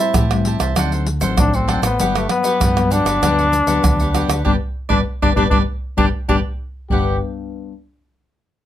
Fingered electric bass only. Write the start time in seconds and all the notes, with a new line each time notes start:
0.16 A2
0.60 C2
0.76 D2
1.21 A1
1.37 A1
1.82 A1
1.99 G1
2.60 G2
3.05 G1
3.21 D2
3.67 D2
3.83 D2
4.28 D2
4.45 G1
4.90 G1
5.22 G1
5.37 G1
5.51 G1
5.98 G1
6.29 G1
6.91 G1